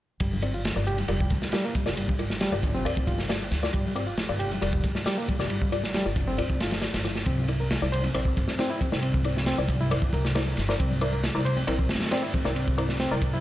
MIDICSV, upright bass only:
0, 0, Header, 1, 2, 480
1, 0, Start_track
1, 0, Tempo, 441176
1, 224, Time_signature, 4, 2, 24, 8
1, 14582, End_track
2, 0, Start_track
2, 0, Title_t, "Upright bass"
2, 0, Program_c, 0, 32
2, 224, Note_on_c, 0, 31, 93
2, 779, Note_off_c, 0, 31, 0
2, 827, Note_on_c, 0, 31, 86
2, 1137, Note_off_c, 0, 31, 0
2, 1182, Note_on_c, 0, 29, 86
2, 1366, Note_off_c, 0, 29, 0
2, 1423, Note_on_c, 0, 38, 83
2, 1517, Note_off_c, 0, 38, 0
2, 2024, Note_on_c, 0, 31, 87
2, 2697, Note_off_c, 0, 31, 0
2, 2745, Note_on_c, 0, 31, 87
2, 3099, Note_on_c, 0, 38, 85
2, 3116, Note_off_c, 0, 31, 0
2, 3284, Note_off_c, 0, 38, 0
2, 3344, Note_on_c, 0, 31, 84
2, 3778, Note_off_c, 0, 31, 0
2, 3824, Note_on_c, 0, 38, 93
2, 4006, Note_off_c, 0, 38, 0
2, 4071, Note_on_c, 0, 31, 91
2, 4622, Note_off_c, 0, 31, 0
2, 4669, Note_on_c, 0, 31, 91
2, 4978, Note_off_c, 0, 31, 0
2, 5028, Note_on_c, 0, 29, 87
2, 5208, Note_off_c, 0, 29, 0
2, 5264, Note_on_c, 0, 38, 85
2, 5358, Note_off_c, 0, 38, 0
2, 5873, Note_on_c, 0, 31, 84
2, 6541, Note_off_c, 0, 31, 0
2, 6592, Note_on_c, 0, 31, 86
2, 6947, Note_on_c, 0, 38, 85
2, 6963, Note_off_c, 0, 31, 0
2, 7128, Note_off_c, 0, 38, 0
2, 7186, Note_on_c, 0, 31, 87
2, 7544, Note_off_c, 0, 31, 0
2, 7550, Note_on_c, 0, 31, 88
2, 7859, Note_off_c, 0, 31, 0
2, 7905, Note_on_c, 0, 36, 93
2, 8459, Note_off_c, 0, 36, 0
2, 8509, Note_on_c, 0, 36, 88
2, 8818, Note_off_c, 0, 36, 0
2, 8863, Note_on_c, 0, 34, 86
2, 9046, Note_off_c, 0, 34, 0
2, 9108, Note_on_c, 0, 31, 82
2, 9200, Note_off_c, 0, 31, 0
2, 9708, Note_on_c, 0, 36, 83
2, 10378, Note_off_c, 0, 36, 0
2, 10428, Note_on_c, 0, 36, 92
2, 10786, Note_on_c, 0, 31, 89
2, 10802, Note_off_c, 0, 36, 0
2, 10967, Note_off_c, 0, 31, 0
2, 11020, Note_on_c, 0, 36, 90
2, 11456, Note_off_c, 0, 36, 0
2, 11502, Note_on_c, 0, 31, 93
2, 11686, Note_off_c, 0, 31, 0
2, 11749, Note_on_c, 0, 36, 92
2, 12302, Note_off_c, 0, 36, 0
2, 12347, Note_on_c, 0, 36, 94
2, 12657, Note_off_c, 0, 36, 0
2, 12706, Note_on_c, 0, 34, 87
2, 12887, Note_off_c, 0, 34, 0
2, 12947, Note_on_c, 0, 31, 84
2, 13039, Note_off_c, 0, 31, 0
2, 13549, Note_on_c, 0, 36, 84
2, 14219, Note_off_c, 0, 36, 0
2, 14270, Note_on_c, 0, 36, 89
2, 14582, Note_off_c, 0, 36, 0
2, 14582, End_track
0, 0, End_of_file